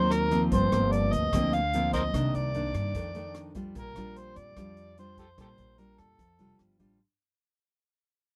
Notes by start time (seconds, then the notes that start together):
Already playing: D#2 D#3 F#3 A#3 C4 C5
0.11 A#4, cross-stick, closed hi-hat
0.31 F3 A#3 C4, closed hi-hat
0.52 G1 G2 C5, kick, closed hi-hat
0.72 G1 F3 A#3 C4, cross-stick, closed hi-hat
0.92 D5, closed hi-hat
1.12 D2 D#5, closed hi-hat
1.33 D2 D3 F3 A#3 C4, kick, cross-stick, closed hi-hat
1.53 F5, closed hi-hat
1.73 F3 A#3 C4, closed hi-hat
1.93 A#4 C5 D#5, kick, closed hi-hat
2.14 C2 C3 D#3 A#3 D4, kick, cross-stick, closed hi-hat
2.34 C2 D5, closed hi-hat
2.54 D#3 A#3 D4, closed hi-hat
2.74 G2, cross-stick, closed hi-hat
2.94 F2 D#3 A3 D4, kick, closed hi-hat
3.15 D#3 A3 D4, closed hi-hat
3.34 cross-stick, closed hi-hat
3.55 G3 D4 F4, kick, closed hi-hat
3.75 A#1 A#2 A#4, kick, closed hi-hat
3.95 A#1 G3 D4 F4, cross-stick, closed hi-hat
4.16 C5, closed hi-hat
4.36 F2 D5, closed hi-hat
4.56 F2 F3 G3 D4 F4, kick, cross-stick, closed hi-hat
4.77 closed hi-hat
4.97 G3 D4 F4 C5, closed hi-hat
5.17 G4 A4 C5, kick, closed hi-hat
5.37 A#1 A#2 G3 D4 F4 G4 A4 C5, kick, cross-stick, closed hi-hat
5.58 A#1, closed hi-hat
5.78 G3 D4 F4 A#4, closed hi-hat
5.98 F2 A4, cross-stick, closed hi-hat
6.19 F2 F3, kick, closed hi-hat
6.39 F1 G3 D4 F4, closed hi-hat
6.59 G1, cross-stick, closed hi-hat
6.79 A1 G3 D4 F4, closed hi-hat